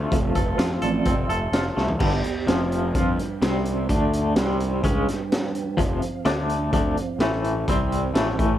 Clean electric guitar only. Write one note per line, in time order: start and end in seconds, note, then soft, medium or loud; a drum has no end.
0.00 1.06 A3 medium
0.00 0.36 C4 medium
0.00 0.57 F4 medium
0.00 0.34 A4 medium
0.12 1.30 F3 medium
0.36 0.81 A4 medium
0.58 1.52 F4 medium
0.82 1.28 A4 medium
1.06 2.00 C4 medium
1.29 2.00 A4 medium
1.53 2.00 F4 medium
1.77 2.00 A3 medium
1.99 2.22 G2 loud
1.99 2.23 D3 loud
1.99 2.23 G3 loud
2.23 muted clean electric guitar stroke medium
2.47 2.94 F2 medium
2.47 2.94 C3 medium
2.47 2.93 F3 loud
2.94 3.17 F3 medium
2.94 3.18 C4 medium
2.94 3.18 F4 medium
3.18 muted clean electric guitar stroke medium
3.42 3.88 C3 medium
3.42 3.88 G3 loud
3.42 3.89 C4 loud
3.89 4.35 D3 loud
3.89 4.36 A3 loud
3.89 4.36 D4 loud
4.37 4.83 G3 medium
4.37 4.83 C4 medium
4.83 5.06 C#3 medium
4.83 5.07 G#3 loud
4.83 5.07 C#4 loud
5.77 6.00 F2 loud
5.77 6.01 C3 loud
5.77 6.01 F3 loud
6.01 muted clean electric guitar stroke medium
6.25 6.72 D3 medium
6.25 6.72 A3 medium
6.25 6.72 D4 loud
6.73 6.96 D3 medium
6.73 6.96 A3 medium
6.73 6.96 D4 loud
6.97 muted clean electric guitar stroke medium
7.20 7.67 A2 medium
7.20 7.67 E3 medium
7.20 7.67 A3 loud
7.68 8.13 C3 medium
7.68 8.14 G3 loud
7.68 8.15 C4 loud
8.14 8.36 A2 medium
8.14 8.36 E3 medium
8.14 8.37 A3 loud
8.38 8.59 A2 medium
8.38 8.59 E3 medium
8.38 8.59 A3 loud